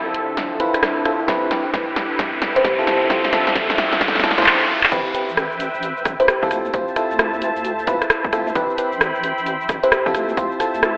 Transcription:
Already playing: analog synth pad D3 F3 C4 A4 E5, fm electric piano C4 E4 F4 A4, ambient pad D4, riser
0.06 kalimba E4
0.14 closed hi-hat
0.37 snare, closed hi-hat
0.60 fm electric piano C4 E4 F4 B4, kalimba E4, closed hi-hat
0.74 cross-stick, closed hi-hat
0.83 cross-stick, snare, closed hi-hat
1.05 fm electric piano C4 E4 F4 A4, kalimba E4, cross-stick, closed hi-hat
1.20 kalimba E4
1.28 analog synth pad A2 E4 G4 B4, ambient pad C4, fm electric piano C4 E4 G4 B4, kalimba E4, kick, snare, closed hi-hat
1.51 fm electric piano C4 E4 G4 B4, snare, closed hi-hat
1.74 kick, snare, closed hi-hat
1.96 snare, closed hi-hat
2.01 ambient pad A4 G5
2.19 kick, snare, closed hi-hat
2.42 snare, closed hi-hat
2.56 fm electric piano C4 E4 G4 B4, kalimba C5, closed hi-hat
2.65 kalimba G4, kick, snare, closed hi-hat
2.79 fm electric piano C4 E4 F4 A4, kalimba G4
2.87 analog synth pad D3 F3 A4 E5, ambient pad D4, snare, closed hi-hat
3.10 fm electric piano C4 E4 F4 C5, kick, snare, closed hi-hat, noise sweep
3.24 snare
3.33 fm electric piano C4 E4 F4 A4, snare, closed hi-hat
3.47 snare
3.53 kalimba E4, ambient pad C5, kick, snare, closed hi-hat
3.70 kalimba E4, snare
3.78 snare, closed hi-hat
3.93 snare
4.01 kick, snare, closed hi-hat
4.08 snare
4.15 snare
4.20 snare
4.24 fm electric piano C4 E4 F4 A4, snare, closed hi-hat
4.31 snare
4.38 fm electric piano C4 E4 F4 C5, snare, closed hi-hat
4.42 snare
4.46 clap
4.83 clap
4.92 wobble bass A1, fm electric piano C4 E4 G4 B4, analog synth pad B4 C5 E5 G5, kick, closed hi-hat, crash, impact, shaker
5.06 shaker
5.15 fm electric piano C4 E4 G4 B4, closed hi-hat, shaker
5.29 wobble bass A1, shaker
5.37 cross-stick, closed hi-hat, shaker
5.52 shaker
5.60 closed hi-hat, shaker
5.74 wobble bass A1, shaker
5.83 closed hi-hat, shaker
5.97 shaker
6.05 wobble bass A1, kick, cross-stick, closed hi-hat, shaker
6.20 fm electric piano C4 E4 G4 B4, kalimba C5, closed hi-hat, shaker
6.28 kalimba G4, cross-stick, closed hi-hat, shaker
6.43 wobble bass A1, fm electric piano C4 E4 F4 A4, kalimba G4, kick, shaker
6.51 wobble bass D2, analog synth pad E5 A5, cross-stick, closed hi-hat, shaker
6.65 shaker
6.74 wobble bass D2, fm electric piano C4 E4 F4 C5, kick, closed hi-hat, shaker
6.88 shaker
6.96 fm electric piano C4 E4 F4 A4, cross-stick, closed hi-hat, shaker
7.11 wobble bass D2, shaker
7.19 kalimba E4, cross-stick, closed hi-hat, shaker
7.33 kalimba E4, shaker
7.42 closed hi-hat, shaker
7.56 wobble bass D2, shaker
7.65 closed hi-hat, shaker
7.79 shaker
7.87 wobble bass D2, fm electric piano C4 E4 F4 B4, kalimba E4, kick, closed hi-hat, shaker
8.02 cross-stick, closed hi-hat, shaker
8.10 cross-stick, closed hi-hat, shaker
8.24 wobble bass D2, kick, shaker
8.33 wobble bass D2, fm electric piano C4 E4 F4 A4, kalimba E4, cross-stick, closed hi-hat, shaker
8.47 kalimba E4, shaker
8.55 wobble bass A1, fm electric piano C4 E4 G4 B4, kalimba E4, analog synth pad G5 B5, kick, closed hi-hat, shaker
8.70 shaker
8.78 fm electric piano C4 E4 G4 B4, closed hi-hat, shaker
8.93 wobble bass A1, shaker
9.01 cross-stick, closed hi-hat, shaker
9.15 shaker
9.24 closed hi-hat, shaker
9.38 wobble bass A1, shaker
9.46 closed hi-hat, shaker
9.61 shaker
9.69 wobble bass A1, kick, cross-stick, closed hi-hat, shaker
9.83 fm electric piano C4 E4 G4 B4, kalimba C5, closed hi-hat, shaker
9.92 kalimba G4, cross-stick, closed hi-hat, shaker
10.06 wobble bass A1, fm electric piano C4 E4 F4 A4, kalimba G4, kick, shaker
10.15 wobble bass D2, analog synth pad A5, cross-stick, closed hi-hat, shaker
10.29 shaker
10.37 wobble bass D2, fm electric piano C4 E4 F4 C5, kick, closed hi-hat, shaker
10.52 shaker
10.60 fm electric piano C4 E4 F4 A4, cross-stick, closed hi-hat, shaker
10.74 wobble bass D2, shaker
10.83 kalimba E4, cross-stick, closed hi-hat, shaker

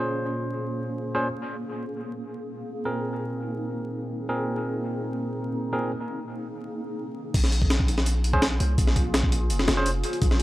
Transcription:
Already playing: tine electric piano A#2 C#4 G#4 C5, ambient pad A#3 C#4 F4 G#4
1.15 tine electric piano A#2 C#4 G#4 C5
1.60 ambient pad C4 D#4
2.85 tine electric piano A#2 C4 G#4 A#4
4.29 tine electric piano A#2 C4 G#4 A#4
5.73 tine electric piano A#2 C4 G#4 A#4
7.34 808-style bass A#1, ambient pad A#3 C#4 F4 G#4, kick, closed hi-hat, crash
7.44 snare
7.52 closed hi-hat
7.62 kick
7.70 snare, closed hi-hat
7.80 kick
7.88 closed hi-hat
7.98 snare
8.06 closed hi-hat
8.24 closed hi-hat
8.33 tine electric piano C#4 G#4 C5, kick
8.42 snare, closed hi-hat
8.60 808-style bass C2, closed hi-hat
8.78 808-style bass A#1, kick, closed hi-hat
8.87 snare
8.96 kick, closed hi-hat
9.14 snare, closed hi-hat
9.23 kick
9.32 closed hi-hat
9.50 808-style bass F1, closed hi-hat
9.59 snare
9.68 808-style bass F1, snare, closed hi-hat
9.77 tine electric piano C#4 G#4 C5
9.86 closed hi-hat
10.04 closed hi-hat
10.13 closed hi-hat
10.22 808-style bass A#1, kick, closed hi-hat
10.31 snare

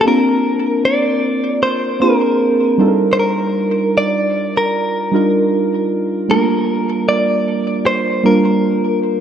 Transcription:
0.01 synth keys A#3, clean electric guitar A4
0.06 synth keys C4 D4 F4 A#4, clean electric guitar A#4
0.85 clean electric guitar D5
1.63 clean electric guitar C5
2.00 synth keys A#3 C4 D4 F4 G#4, clean electric guitar A#4
2.10 synth keys A#4
2.78 synth keys G3 D4 D#4 F4 A4
2.88 synth keys A#4
3.13 clean electric guitar C5
3.19 clean electric guitar A#4
3.98 clean electric guitar D5
4.57 clean electric guitar A#4
5.11 synth keys G3 D4 D#4 F4 A#4
6.28 synth keys G3 A3 D4 F4 A#4, clean electric guitar A#4
6.36 synth keys A#3
7.09 clean electric guitar D5
7.86 clean electric guitar C5
8.23 synth keys G3 A#3 D4 F4 A#4, clean electric guitar A#4

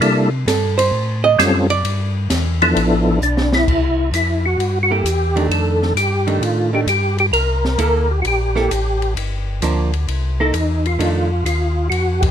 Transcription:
0.00 tonewheel organ C3 G3 A#3 D4 E4 A4, ride
0.46 tonewheel organ G2, hollow-body jazz guitar A4, snare, hi-hat pedal, ride
0.78 hollow-body jazz guitar C5, ride
0.91 tonewheel organ A2
1.24 hollow-body jazz guitar D#5
1.39 tonewheel organ F#2 G3 C4 C#4 F4 A4, snare, hi-hat pedal, ride
1.70 hollow-body jazz guitar D5, ride
1.84 tonewheel organ G2, ride
2.30 tonewheel organ E2, snare, hi-hat pedal, ride
2.62 tonewheel organ F3 B3 D4 E4 A4, ride
2.75 tonewheel organ A1, ride
3.08 tonewheel organ D4
3.21 tonewheel organ B1 D4, hi-hat pedal
3.37 snare
3.53 tonewheel organ E4, snare
3.67 tonewheel organ C2, kick, crash
4.12 tonewheel organ F2 E4, hi-hat pedal, ride
4.46 tonewheel organ F#4
4.58 tonewheel organ G2, ride
4.83 tonewheel organ F#4
4.91 hollow-body jazz guitar A#3 E4 A4, tonewheel organ G4
5.04 tonewheel organ E2, hi-hat pedal, ride
5.36 hollow-body jazz guitar D#3 A3 D4, ride
5.48 tonewheel organ F2 A4, ride
5.82 snare
5.95 tonewheel organ G2 G4, hi-hat pedal, ride
6.27 hollow-body jazz guitar D#3 A3 D4, ride
6.41 tonewheel organ A2 F4, ride
6.73 hollow-body jazz guitar D#3 A3 D4, tonewheel organ G4
6.86 tonewheel organ G2 G4, hi-hat pedal, ride
7.18 tonewheel organ G4, ride
7.32 tonewheel organ C2 A#4, ride
7.65 snare
7.78 tonewheel organ D2, hollow-body jazz guitar A#3 E4 A4, hi-hat pedal, ride
8.11 tonewheel organ G4
8.22 tonewheel organ A#1 F#4, ride
8.27 tonewheel organ G4
8.56 hollow-body jazz guitar A#3 E4 A4, snare
8.71 tonewheel organ A1, hi-hat pedal, ride
9.02 ride
9.16 tonewheel organ G1, ride
9.62 tonewheel organ D2, hollow-body jazz guitar F3 A#3 D4, hi-hat pedal, ride
9.94 ride
10.07 tonewheel organ C2, ride
10.40 hollow-body jazz guitar A#3 E4 A4, tonewheel organ D#4
10.53 tonewheel organ E2, hi-hat pedal, ride
10.86 tonewheel organ F4, ride
10.99 tonewheel organ F2, hollow-body jazz guitar D#3 A3 D4, ride
11.44 tonewheel organ D#2 F4, hi-hat pedal, ride
11.90 tonewheel organ F2 F#4, ride
12.21 tonewheel organ G4, kick, ride

